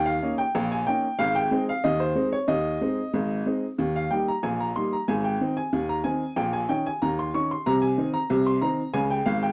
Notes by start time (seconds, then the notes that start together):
Already playing: D#2 D#3
0.06 F5
0.22 A#3 C#4 D#4
0.38 G5
0.55 A#1 A#2
0.72 G#5
0.87 A#3 C#4 D#4 G5
1.19 G#1 G#2 F5
1.35 G5
1.51 G#3 C4 D#4
1.69 F5
1.84 D#2 D#3 D#5
2.00 C5
2.15 G#3 C4 D#4
2.32 C#5
2.48 D#2 D#3 D#5
2.81 G#3 C4 D#4
3.14 G#1 G#2
3.46 G#3 C4 D#4
3.78 D#2 D#3
3.96 F5
4.11 G3 A#3 D#4 G5
4.28 A#5
4.43 A#1 A#2 G#5
4.60 A#5
4.76 G3 A#3 D#4 C6
4.93 A#5
5.08 G#1 G#2 G#5
5.24 G5
5.41 D#3 C4 D#4
5.57 G#5
5.73 D#2 D#3
5.89 A#5
6.04 D#3 C4 D#4 G#5
6.36 A#1 A#2 G5
6.53 G#5
6.69 D#3 C#4 D#4 G5
6.86 G#5
7.02 D#2 D#3 A#5
7.19 C6
7.34 D#3 C#4 D#4 C#6
7.51 C6
7.66 C2 C3 A#5
7.82 G#5
7.98 D#3 C4 D#4
8.14 A#5
8.30 C2 C3
8.46 C6
8.62 D#3 C4 D#4 A#5
8.94 C#2 C#3 G#5
9.11 G5
9.26 G#1 G#2 F5
9.43 G5